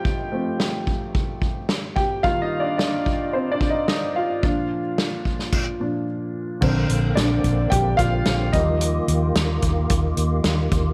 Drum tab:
CC |----------------|----------------|--------x-------|x---------------|
HH |----------------|----------------|----------------|--x-x-x-x-x-x-x-|
SD |----o-------o---|----o-------o---|----o--o--------|----o-------o---|
BD |o-----o-o-o---o-|o-----o---o-----|o-----o-o-------|o-----o-o-o---o-|

CC |----------------|
HH |x-x-x-x-x-x-x-x-|
SD |----o-------o---|
BD |------o-o-----o-|